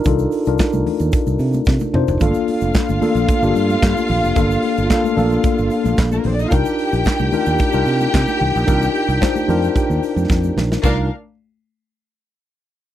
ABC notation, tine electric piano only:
X:1
M:4/4
L:1/16
Q:1/4=111
K:Cdor
V:1 name="Tine electric piano"
[DEFA]2 z [DEFB]6 z4 z [DEFc]2 | [A,B,DFA]4- [A,B,DFA] z [B,DFA]2 z [B,DFGA]6 z | [B,DFA]3 z [B,DFA]2 [B,DFA]6 z4 | [DEFB]4- [DEFB] z [DEFB]2 z [DEFB]6 z |
[DEFB]3 z [DEFc]2 [DEFB]6 z4 | [DEFB]2 z12 z2 |]